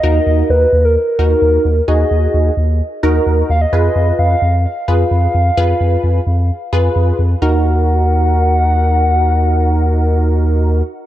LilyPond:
<<
  \new Staff \with { instrumentName = "Soft synth lead" } { \time 4/4 \key ees \minor \tempo 4 = 130 ees''4 ces''8. bes'16 bes'2 | ees''2 r4. f''16 ees''16 | ees''4 f''4 f''2~ | f''2. r4 |
ges''1~ | ges''1 | }
  \new Staff \with { instrumentName = "Analog polysynth" } { \time 4/4 \key ees \minor <ees' ges' bes'>4. r4 <ees' ges' bes'>4 r8 | <ees' ges' aes'>4. r4 <ees' ges' bes'>4 r8 | <f' aes' ces''>4. r4 <f' aes' ces''>4 r8 | <f' aes' ces''>4. r4 <f' aes' ces''>4 r8 |
<ees' ges' bes'>1~ | <ees' ges' bes'>1 | }
  \new Staff \with { instrumentName = "Analog synth bass" } { \clef bass \time 4/4 \key ees \minor ees,8 ees,8 ees,8 ees,8. r16 ees,8 ees,8 ees,8 | ees,8 ees,8 ees,8 ees,8. r16 ees,8 ees,8 ees,8 | f,8 f,8 f,8 f,8. r16 f,8 f,8 f,8 | f,8 f,8 f,8 f,8. r16 f,8 f,8 f,8 |
ees,1~ | ees,1 | }
>>